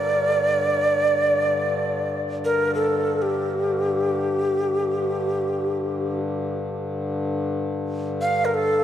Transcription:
Already playing: harmonium G2 D3, tubular bells A#4, native american-style wooden flute D5
2.45 native american-style wooden flute A#4
2.75 native american-style wooden flute A4
3.22 native american-style wooden flute G4
8.21 native american-style wooden flute F5
8.45 native american-style wooden flute A#4
8.54 native american-style wooden flute A4

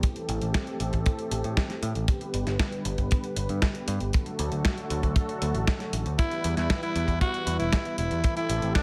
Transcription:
Already playing: analog synth pad E3 G4
0.03 analog synth pad A3 C4 A4, kick, closed hi-hat
0.16 closed hi-hat
0.29 picked electric bass A1, closed hi-hat
0.41 picked electric bass A1, closed hi-hat
0.54 kick, snare, closed hi-hat
0.67 closed hi-hat
0.80 picked electric bass A1, closed hi-hat
0.93 picked electric bass A1, kick, closed hi-hat
1.06 kick, closed hi-hat
1.19 closed hi-hat
1.31 picked electric bass A1, closed hi-hat
1.44 picked electric bass A2, closed hi-hat
1.57 kick, snare, closed hi-hat
1.70 snare, closed hi-hat
1.83 picked electric bass A2, closed hi-hat
1.95 picked electric bass A1, closed hi-hat
2.08 analog synth pad D3 G3 B3 B4, kick, closed hi-hat
2.21 closed hi-hat
2.34 picked electric bass G1, closed hi-hat
2.47 picked electric bass G1, snare, closed hi-hat
2.59 kick, snare, closed hi-hat
2.72 closed hi-hat
2.85 picked electric bass G1, closed hi-hat
2.98 picked electric bass G1, kick, closed hi-hat
3.11 kick, closed hi-hat
3.24 closed hi-hat
3.36 picked electric bass G1, closed hi-hat
3.49 picked electric bass G2, closed hi-hat
3.62 kick, snare, closed hi-hat
3.75 closed hi-hat
3.88 picked electric bass G2, closed hi-hat
4.00 picked electric bass G1, closed hi-hat
4.13 analog synth pad D3 F#3 A3 F#4 A4, kick, closed hi-hat
4.26 closed hi-hat
4.39 picked electric bass D2, closed hi-hat
4.52 picked electric bass D2, closed hi-hat
4.65 kick, snare, closed hi-hat
4.78 closed hi-hat
4.90 picked electric bass D2, closed hi-hat
5.03 picked electric bass D2, kick, closed hi-hat
5.16 kick, closed hi-hat
5.29 closed hi-hat
5.42 picked electric bass D2, closed hi-hat
5.55 picked electric bass A1, closed hi-hat
5.67 kick, snare, closed hi-hat
5.80 snare, closed hi-hat
5.93 picked electric bass A1, closed hi-hat
6.06 picked electric bass D2, closed hi-hat
6.18 analog synth pad E3 G3 B3 E4 B4, alto saxophone E4, kick, closed hi-hat
6.31 closed hi-hat
6.44 picked electric bass E2, closed hi-hat
6.57 picked electric bass E2, alto saxophone E4, snare, closed hi-hat
6.70 kick, snare, closed hi-hat
6.83 alto saxophone E4, closed hi-hat
6.96 picked electric bass E2, closed hi-hat
7.08 picked electric bass E2, kick, closed hi-hat
7.21 alto saxophone F#4, kick, closed hi-hat
7.34 closed hi-hat
7.47 picked electric bass E2, closed hi-hat
7.59 picked electric bass E1, alto saxophone E4, closed hi-hat
7.73 kick, snare, closed hi-hat
7.85 closed hi-hat
7.98 picked electric bass E1, alto saxophone E4, closed hi-hat
8.11 picked electric bass E2, closed hi-hat
8.24 analog synth pad A3 C4 G4 A4, kick, closed hi-hat
8.37 alto saxophone E4, closed hi-hat
8.49 picked electric bass A1, closed hi-hat
8.62 picked electric bass A1, closed hi-hat
8.75 alto saxophone D4, kick, snare, closed hi-hat

